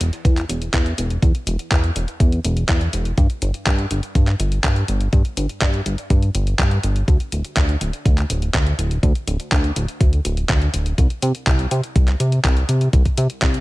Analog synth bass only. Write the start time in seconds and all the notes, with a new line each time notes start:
0.01 E1
0.25 E2
0.49 E1
0.74 E2
0.98 E1
1.22 E2
1.47 E1
1.71 E2
1.96 E1
2.20 E2
2.44 E1
2.69 E2
2.93 E1
3.18 G2
3.42 G1
3.66 G2
3.91 G1
4.15 G2
4.40 G1
4.64 G2
4.88 G1
5.13 G2
5.37 G1
5.62 G2
5.86 G1
6.10 G2
6.35 G1
6.59 G2
6.84 G1
7.08 D2
7.32 D1
7.57 D2
7.81 D1
8.05 D2
8.30 D1
8.54 D2
8.79 D1
9.03 D2
9.27 D1
9.52 D2
9.76 D1
10.01 D2
10.25 D1
10.49 D2
10.74 D1
10.98 C2
11.22 C3
11.47 C2
11.71 C3
11.96 C2
12.20 C3
12.44 C2
12.69 C3
12.93 C2
13.18 C3
13.42 C2